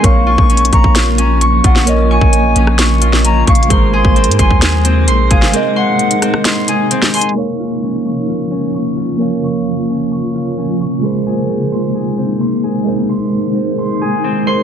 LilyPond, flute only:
\new Staff \with { instrumentName = "Flute" } { \time 4/4 \key bes \minor \tempo 4 = 131 r8 des'''4 bes''8 r4. ges''8 | r8 aes''4. r4 bes''8 f''8 | r8 c'''4 aes''8 r4. f''8 | r8 ges''4. r4. aes''8 |
r1 | r1 | r1 | r1 | }